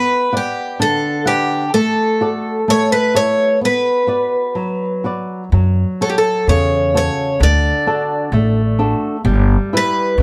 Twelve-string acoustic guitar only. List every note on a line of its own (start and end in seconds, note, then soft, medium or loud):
0.00 0.35 B4 loud
0.37 0.81 G4 medium
0.82 1.27 A4 medium
1.27 1.74 G4 medium
1.74 2.69 A4 medium
2.70 2.90 C#5 loud
2.92 3.15 B4 medium
3.16 3.58 C#5 loud
3.65 5.02 B4 medium
6.02 6.08 A4 medium
6.09 6.15 G4 medium
6.18 6.49 A4 medium
6.49 6.96 C#5 medium
6.97 7.43 C#5 medium
7.43 8.76 D5 loud
9.77 10.22 B4 loud